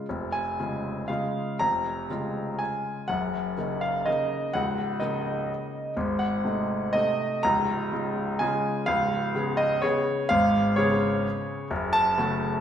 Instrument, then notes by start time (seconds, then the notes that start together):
grand piano
0.09 F1 F2
0.32 G#5
0.60 C#3 G#3 F4
1.08 C#3 G#3 F4 F5
1.59 F1 F2 A#5
2.10 C#3 G#3 F4
2.59 G#5
3.08 F#1 F#2 F#5
3.58 C#3 A#3 D#4
3.81 F5
4.06 C#3 A#3 D#4 D#5
4.53 C#1 C#2 F#5
5.00 C#3 A#3 D#4 D#5
5.97 G#1 G#2
6.19 F#5
6.44 C3 A3 D#4
6.93 C3 A3 D#4 D#5
7.43 C#1 C#2 A#5
7.92 C#3 G#3 F4
8.39 C#3 G#3 F4 G#5
8.86 C#1 C#2 F5
9.35 C#3 B3 G#4
9.57 D#5
9.82 C#3 B3 G#4 C#5
10.29 G#1 G#2 F5
10.76 C#3 B3 G#4 C#5
11.71 F#1 F#2
11.93 A5
12.18 C#3 A3 F#4